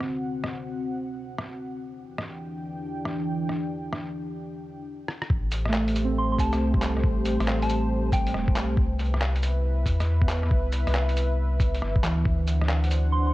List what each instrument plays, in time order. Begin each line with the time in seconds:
Already playing: analog synth pad D3 C4 F#5
0.01 cross-stick
0.44 cross-stick
1.38 cross-stick
1.83 analog synth pad E3 D4 G5
2.18 cross-stick
3.05 cross-stick
3.49 cross-stick
3.93 cross-stick
5.08 cross-stick
5.22 cross-stick
5.30 sub bass A1, analog synth pad A3 G4 C5, kick
5.52 closed hi-hat, cabasa
5.65 synth keys A3, cross-stick
5.74 clap
5.88 closed hi-hat
5.96 closed hi-hat, cabasa
6.04 synth keys C4
6.18 synth bell C6
6.32 synth bell C6
6.39 sub bass C2, synth bell A5, kick, closed hi-hat, cabasa
6.53 cross-stick, closed hi-hat, cabasa
6.74 synth keys G3, kick
6.82 clap, closed hi-hat, cabasa
6.97 cross-stick
7.03 sub bass A1, kick
7.25 closed hi-hat, cabasa
7.39 sub bass A1, cross-stick, closed hi-hat
7.48 clap
7.62 synth bell A5, closed hi-hat
7.70 closed hi-hat, cabasa
8.12 synth bell G5, kick, closed hi-hat, cabasa
8.27 closed hi-hat
8.34 sub bass E1, cross-stick
8.48 kick
8.55 sub bass B1, clap, closed hi-hat, cabasa
8.77 sub bass C2, analog synth pad B4 E5, kick
9.00 closed hi-hat, cabasa
9.14 cross-stick
9.22 clap
9.36 closed hi-hat
9.43 closed hi-hat, cabasa
9.86 sub bass E2, kick, closed hi-hat, cabasa
10.01 cross-stick, closed hi-hat, cabasa
10.22 synth keys B3, kick
10.29 clap, closed hi-hat, cabasa
10.43 cross-stick
10.51 sub bass C2, kick
10.73 closed hi-hat, cabasa
10.87 sub bass C2, cross-stick, closed hi-hat
10.95 clap
11.09 closed hi-hat
11.17 closed hi-hat, cabasa
11.60 kick, closed hi-hat, cabasa
11.75 closed hi-hat
11.82 sub bass G1, cross-stick
11.96 kick
12.03 sub bass D2, synth keys E3, clap, closed hi-hat, cabasa
12.25 sub bass D2, analog synth pad D4 C5 F#5, kick
12.48 closed hi-hat, cabasa
12.62 cross-stick
12.69 clap
12.84 closed hi-hat
12.91 closed hi-hat, cabasa
13.12 synth bell C6
13.27 synth bell C6